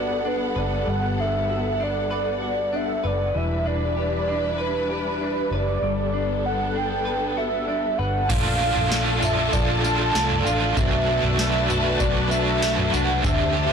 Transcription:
Already playing: fingered electric bass G1, clean electric guitar G3 D4 F#4 B4, string section G3 B3 A4 F#5, soft synth lead D5
0.25 clean electric guitar D4, soft synth lead B4
0.56 fingered electric bass F#1, clean electric guitar B4, soft synth lead D5
0.87 fingered electric bass G1, clean electric guitar G3, soft synth lead F#5
1.18 clean electric guitar D4, soft synth lead E5
1.49 clean electric guitar F#4
1.80 clean electric guitar D4, soft synth lead D5
2.11 clean electric guitar B4
2.42 clean electric guitar F#4
2.73 clean electric guitar D4, soft synth lead E5
3.04 fingered electric bass F#1, clean electric guitar B4, soft synth lead D5
3.34 fingered electric bass E1, clean electric guitar E3, string section G3 D4 E4 B4, soft synth lead E5
3.65 clean electric guitar D4, soft synth lead D5
3.97 clean electric guitar G4
4.28 clean electric guitar D4
4.58 clean electric guitar B4, soft synth lead B4
4.89 clean electric guitar G4, soft synth lead B4
5.21 clean electric guitar D4, soft synth lead B4
5.51 fingered electric bass F#1, clean electric guitar B4, soft synth lead D5
5.82 fingered electric bass G1, clean electric guitar G3, string section B3 D4 A4
6.14 clean electric guitar D4
6.46 soft synth lead F#5
6.75 clean electric guitar D4, soft synth lead G5
7.05 clean electric guitar B4
7.37 clean electric guitar F#4, soft synth lead E5
7.68 clean electric guitar D4
7.98 fingered electric bass G1, clean electric guitar B4, soft synth lead F#5
8.28 fingered electric bass A#1, overdriven electric guitar A#2 D3 A3 D4 F4, string section F4 A4 D5 A5, soft synth lead F5, kick, floor tom, crash, tambourine
8.60 clean electric guitar D4, overdriven electric guitar D4 F4
8.65 overdriven electric guitar A3
8.76 fingered electric bass A#1, floor tom
8.91 overdriven electric guitar D3 A3 D4, clean electric guitar A3, snare, tambourine
8.96 overdriven electric guitar F4
9.22 overdriven electric guitar D4 F4, clean electric guitar F4, soft synth lead E5, floor tom, tambourine
9.26 overdriven electric guitar A3
9.53 fingered electric bass A#1, overdriven electric guitar A#2 D3 A3 D4 F4, clean electric guitar F3, soft synth lead D5, kick, floor tom, tambourine
9.83 clean electric guitar D4, overdriven electric guitar D4 F4, soft synth lead A5, tambourine
9.88 overdriven electric guitar A3
10.14 fingered electric bass C2, overdriven electric guitar D3 A3 D4, clean electric guitar A3, snare, tambourine
10.18 overdriven electric guitar F4
10.31 floor tom
10.45 fingered electric bass A1, clean electric guitar D4, overdriven electric guitar D4 F4, soft synth lead F5, tambourine
10.50 overdriven electric guitar A3
10.76 fingered electric bass B1, overdriven electric guitar B2 F#3 A3 D4 F#4, clean electric guitar B2, string section F#4 B4 A5, soft synth lead E5, kick, floor tom, tambourine
11.08 clean electric guitar D4, overdriven electric guitar D4 F#4
11.12 overdriven electric guitar A3
11.23 fingered electric bass B1, floor tom
11.38 overdriven electric guitar F#3 A3 D4, clean electric guitar A3, snare, tambourine
11.43 overdriven electric guitar F#4
11.69 overdriven electric guitar D4 F#4, clean electric guitar F#4, floor tom, tambourine
11.73 overdriven electric guitar A3
11.99 fingered electric bass B1, overdriven electric guitar B2 F#3 A3 D4 F#4, clean electric guitar F#3, soft synth lead D5, kick, floor tom, tambourine
12.30 clean electric guitar D4, overdriven electric guitar D4 F#4, soft synth lead E5, tambourine
12.34 overdriven electric guitar A3
12.61 overdriven electric guitar F#3 A3 D4, clean electric guitar A3, snare, tambourine
12.66 overdriven electric guitar F#4
12.78 floor tom
12.92 fingered electric bass C2, clean electric guitar D4, overdriven electric guitar D4 F#4, soft synth lead F#5, tambourine
12.97 overdriven electric guitar A3
13.22 fingered electric bass D2, overdriven electric guitar D3 A3 C4 G4, clean electric guitar D3, string section G4 C5 D5 A5, soft synth lead E5, kick, floor tom, tambourine
13.53 overdriven electric guitar C4 G4, clean electric guitar G4
13.57 overdriven electric guitar A3

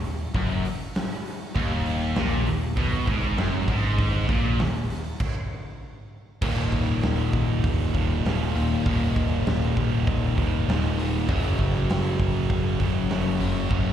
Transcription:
0.04 open hi-hat
0.34 picked electric bass F#1, overdriven electric guitar F#2, kick, open hi-hat
0.65 open hi-hat
0.95 snare, open hi-hat
1.26 open hi-hat
1.55 picked electric bass D#1, distorted electric guitar D#2, kick, open hi-hat
1.86 open hi-hat
2.15 picked electric bass A#1, distorted electric guitar A#2, snare, open hi-hat
2.46 picked electric bass D#1, distorted electric guitar D#2, open hi-hat
2.76 picked electric bass B1, distorted electric guitar B2, kick, open hi-hat
3.07 picked electric bass G#1, distorted electric guitar G#2, kick, open hi-hat
3.37 picked electric bass F#1, distorted electric guitar F#2, snare, open hi-hat
3.68 picked electric bass G#1, distorted electric guitar G#2, kick, open hi-hat
3.98 kick, open hi-hat
4.28 picked electric bass A#1, distorted electric guitar A#2, kick, open hi-hat
4.59 picked electric bass D#1, distorted electric guitar D#2, snare, open hi-hat
4.90 snare, open hi-hat
5.20 kick, crash
6.42 picked electric bass D#1, distorted electric guitar D#2 A#2 D#3, kick, crash
6.72 picked electric bass D#1, kick, open hi-hat
7.02 picked electric bass D#1, snare, open hi-hat
7.33 picked electric bass D#1, kick, open hi-hat
7.64 picked electric bass D#1, kick, open hi-hat
7.94 picked electric bass D#1, distorted electric guitar D#2 A#2 D#3, kick, open hi-hat
8.25 picked electric bass D#1, distorted electric guitar D#2 A#2 D#3, snare, open hi-hat
8.55 picked electric bass D#1, overdriven electric guitar D#2 A#2 D#3, open hi-hat
8.86 picked electric bass D#1, distorted electric guitar D#2 A#2 D#3, kick, open hi-hat
9.16 picked electric bass D#1, kick, open hi-hat
9.46 picked electric bass D#1, snare, open hi-hat
9.77 picked electric bass D#1, kick, open hi-hat
10.07 picked electric bass D#1, kick, open hi-hat
10.37 picked electric bass D#1, distorted electric guitar D#2 A#2 D#3, kick, open hi-hat
10.68 picked electric bass D#1, distorted electric guitar D#2 A#2 D#3, snare, open hi-hat
10.97 overdriven electric guitar D#2 A#2 D#3, open hi-hat
11.28 picked electric bass F#1, distorted electric guitar F#2 C#3 F#3, kick, open hi-hat
11.59 picked electric bass F#1, kick, open hi-hat
11.76 snare
11.90 picked electric bass F#1, snare, open hi-hat
12.19 picked electric bass F#1, kick, open hi-hat
12.50 picked electric bass F#1, kick, open hi-hat
12.80 picked electric bass F#1, distorted electric guitar F#2 C#3 F#3, kick, open hi-hat
13.10 picked electric bass F#1, distorted electric guitar F#2 C#3 F#3, snare, open hi-hat
13.40 picked electric bass F#1, overdriven electric guitar F#2 C#3 F#3, open hi-hat
13.70 picked electric bass F#1, distorted electric guitar F#2 C#3 F#3, kick, open hi-hat

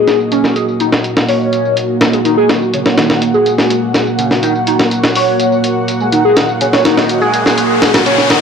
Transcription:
Already playing: analog synth pad A#3 F#4 D#5, analog synth lead G#4
0.07 snare, closed hi-hat, tambourine
0.20 tambourine
0.32 analog synth lead C#4, closed hi-hat, tambourine
0.44 snare
0.56 analog synth lead G#4, closed hi-hat, tambourine
0.68 tambourine
0.80 analog synth lead D#4, closed hi-hat, tambourine
0.92 snare
1.04 closed hi-hat, tambourine
1.17 snare, tambourine
1.28 analog synth lead C#5, open hi-hat, tambourine
1.41 tambourine
1.53 closed hi-hat, tambourine
1.65 tambourine
1.77 closed hi-hat, tambourine
2.01 snare, closed hi-hat, tambourine
2.13 analog synth lead G#4, closed hi-hat, tambourine
2.25 analog synth lead D#4, analog synth pad F#5, closed hi-hat, tambourine
2.37 analog synth lead G#4
2.49 analog synth lead D#4, snare, closed hi-hat, tambourine
2.62 tambourine
2.74 analog synth lead C#4, closed hi-hat, tambourine
2.86 analog synth lead C#5, snare
2.98 analog synth lead D#4, snare, closed hi-hat, tambourine
3.10 snare, tambourine
3.22 closed hi-hat, tambourine
3.34 analog synth lead G#4, tambourine
3.46 analog synth lead G#4, closed hi-hat, tambourine
3.58 analog synth lead G#4, snare, tambourine
3.70 closed hi-hat, tambourine
3.94 snare, closed hi-hat, tambourine
4.07 tambourine
4.19 analog synth lead C#4, closed hi-hat, tambourine
4.31 snare
4.43 analog synth lead D#4, closed hi-hat, tambourine
4.55 tambourine
4.67 analog synth lead D#4, closed hi-hat, tambourine
4.80 snare
4.91 closed hi-hat, tambourine
5.04 snare, tambourine
5.15 analog synth lead C#5, open hi-hat, tambourine
5.28 tambourine
5.40 closed hi-hat, tambourine
5.52 tambourine
5.64 closed hi-hat, tambourine
5.88 closed hi-hat, tambourine
6.00 analog synth lead G#4, tambourine
6.12 analog synth lead D#4, closed hi-hat, tambourine, riser
6.25 analog synth lead G#4
6.36 analog synth lead D#4, snare, closed hi-hat, tambourine
6.49 tambourine
6.61 analog synth lead C#4, closed hi-hat, tambourine
6.73 analog synth lead C#5, snare
6.85 analog synth lead D#4, snare, closed hi-hat, tambourine
6.97 snare, tambourine
7.09 closed hi-hat, tambourine
7.21 analog synth lead G#4, tambourine
7.33 analog synth lead G#4, closed hi-hat, tambourine
7.45 analog synth lead G#4, snare, tambourine
7.58 closed hi-hat, tambourine
7.82 snare, closed hi-hat, tambourine
7.94 snare, closed hi-hat, tambourine
8.06 analog synth lead C#4, closed hi-hat, tambourine
8.18 snare
8.30 analog synth lead D#4, snare, closed hi-hat, tambourine

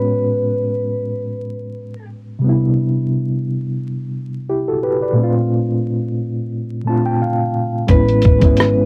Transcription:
Already playing: reed electric piano A2 G#3 B3 C#4 F#4, clean electric guitar B4
2.39 reed electric piano C3 G3
2.44 reed electric piano B3 D4
2.49 reed electric piano E4
4.49 reed electric piano E4 G4
4.68 reed electric piano F#4 A4
4.83 reed electric piano G4 B4
5.02 reed electric piano B4 D5
5.13 reed electric piano A#2 A3
5.18 reed electric piano C4 D4
5.23 reed electric piano F4
6.84 reed electric piano A#2 A3 C4 A5
6.89 reed electric piano D4 F4
7.06 reed electric piano G5
7.22 reed electric piano F5
7.87 upright bass A1, reed electric piano G#3 B3 C#4, clean electric guitar B4, kick, closed hi-hat
7.93 reed electric piano E4
8.09 closed hi-hat
8.22 kick, closed hi-hat
8.39 upright bass G#1, reed electric piano G#3 B3 C#4, kick, closed hi-hat
8.45 reed electric piano E4
8.57 cross-stick, closed hi-hat

